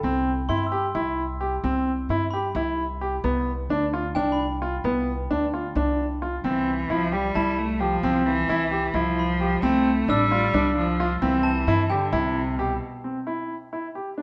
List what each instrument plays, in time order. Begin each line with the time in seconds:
Already playing: glockenspiel G5 B5
0.03 upright bass C2, grand piano C4
0.49 upright bass G2, grand piano E4, glockenspiel C6
0.67 glockenspiel E6
0.72 grand piano G4
0.95 upright bass C2, grand piano E4
1.41 grand piano G4
1.64 upright bass C2, grand piano C4
2.09 upright bass G2, grand piano E4
2.31 grand piano G4, glockenspiel B5
2.55 upright bass C2, grand piano E4
3.01 grand piano G4
3.24 upright bass C2, grand piano B3
3.69 upright bass D2, grand piano D4
3.93 grand piano F4
4.15 upright bass C2, grand piano D4, glockenspiel G5
4.32 glockenspiel B5
4.62 grand piano F4
4.84 upright bass C2, grand piano B3
5.30 upright bass D2, grand piano D4
5.54 grand piano F4
5.75 upright bass C2, grand piano D4
6.22 grand piano F4
6.44 upright bass C2, cello E3, grand piano C4
6.90 upright bass C2, cello F3, grand piano E4
7.12 cello G3, grand piano G4
7.35 upright bass C2, grand piano E4, glockenspiel A5
7.58 cello A3
7.80 cello F3, grand piano G4
8.03 upright bass C2, grand piano C4
8.25 cello E3
8.49 upright bass C2, grand piano E4
8.71 grand piano G4
8.94 upright bass C2, cello F3, grand piano E4
9.19 glockenspiel B5
9.41 grand piano G4
9.62 upright bass C2, cello A3, grand piano C4
10.08 upright bass A1, cello G3, grand piano D4, glockenspiel E6
10.32 grand piano F4
10.54 upright bass C2, grand piano D4
10.77 cello F3
11.00 grand piano F4
11.22 upright bass C2, cello E3, grand piano C4
11.43 glockenspiel A5
11.67 upright bass G2, grand piano E4
11.90 cello D3, grand piano G4, glockenspiel G5
12.13 upright bass C2, cello C3, grand piano E4
12.59 cello B2, grand piano G4
13.04 grand piano C4
13.27 grand piano E4
13.73 grand piano E4
13.95 grand piano G4
14.18 grand piano D4